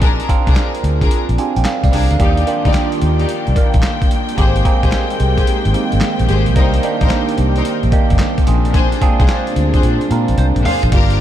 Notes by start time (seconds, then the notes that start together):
Already playing: A#1 C4 D4 F4 G#4
0.02 D4 G#4 A#4, kick, closed hi-hat
0.20 closed hi-hat
0.29 C4 D4 F4 A#4, kick, closed hi-hat
0.47 C2 D4 G#4 A#4, kick, closed hi-hat
0.56 snare, clap, closed hi-hat
0.75 closed hi-hat
0.84 D2, closed hi-hat
1.01 D4 G#4 A#4, kick, closed hi-hat
1.11 closed hi-hat
1.29 A#1, closed hi-hat
1.38 C4 D4 F4 G4 G#5, closed hi-hat
1.56 A#1 G5, closed hi-hat
1.65 F5, snare, clap, closed hi-hat
1.84 C2 D5 F5, kick, closed hi-hat
1.92 C2 D4 G#4 A#4 G5, open hi-hat
2.11 D2 F5, closed hi-hat
2.19 D#2 D#3 A#3 D4 D#4 F4 G4 D5 G5, kick, closed hi-hat
2.37 closed hi-hat
2.47 A#3 D4 F4 G4, closed hi-hat
2.65 D2 D#4 G4 D5, kick, closed hi-hat
2.74 snare, clap, closed hi-hat
2.92 closed hi-hat
3.02 D#2, closed hi-hat
3.19 D#4 G4 D5, closed hi-hat
3.29 closed hi-hat
3.47 C2, closed hi-hat
3.56 A#3 D4 F4 A#4, kick, closed hi-hat
3.74 A#1, kick, closed hi-hat
3.83 snare, clap, closed hi-hat
4.02 kick, closed hi-hat
4.11 closed hi-hat
4.29 closed hi-hat
4.37 G#1 D#3 G#3 A#3 C4 D#4 G4 G#4 C5, kick, closed hi-hat
4.56 closed hi-hat
4.65 A#3 C4 D#4 G#4, kick, closed hi-hat
4.83 A#1 G4 G#4 C5, kick, closed hi-hat
4.92 snare, clap, closed hi-hat
5.10 closed hi-hat
5.20 C2, closed hi-hat
5.37 G4 G#4 C5, kick, closed hi-hat
5.47 closed hi-hat
5.65 G#1, closed hi-hat
5.74 A#3 C4 D#4 G4, closed hi-hat
5.92 G#1, closed hi-hat
6.01 snare, clap, closed hi-hat
6.19 A#1, closed hi-hat
6.28 G#1 G4 G#4 C5, closed hi-hat
6.46 A#1, closed hi-hat
6.56 C2 A#3 C4 D4 D#4 G4 A#4 C5, kick, closed hi-hat
6.74 closed hi-hat
6.83 A#3 D4 D#4 G4, closed hi-hat
7.01 A#1 D#4 A#4 C5, kick, closed hi-hat
7.10 snare, clap, closed hi-hat
7.29 closed hi-hat
7.38 C2, closed hi-hat
7.56 D#4 A#4 C5, closed hi-hat
7.65 closed hi-hat
7.83 A#1, closed hi-hat
7.92 A#3 D4 D#4 G4, kick, closed hi-hat
8.10 G1, kick, closed hi-hat
8.19 snare, clap, closed hi-hat
8.38 kick, closed hi-hat
8.46 A#1 C3 G#3 C4 C#4 D4 F4 G#4, closed hi-hat
8.54 D4
8.65 closed hi-hat
8.74 D4 G#4 C5, kick, closed hi-hat
8.92 closed hi-hat
9.01 C4 D4 F4 G#4, kick, closed hi-hat
9.19 C2 D4 G#4 C5, kick, closed hi-hat
9.28 snare, clap, closed hi-hat
9.47 closed hi-hat
9.56 D2, closed hi-hat
9.74 D4 G#4 C5, kick, closed hi-hat
9.83 A#2, closed hi-hat
10.01 closed hi-hat
10.10 A#2 C4 D4 F4 A#4, closed hi-hat
10.28 A#1, closed hi-hat
10.38 C2 C5, closed hi-hat, high tom
10.56 A#1, closed hi-hat, mid tom
10.65 D4 G#4 C5 F5, mid tom, open hi-hat
10.83 A#1, closed hi-hat, floor tom
10.92 G1 D3 G3 A#3 D4 F4 G4 A#4, kick, closed hi-hat, crash
11.10 closed hi-hat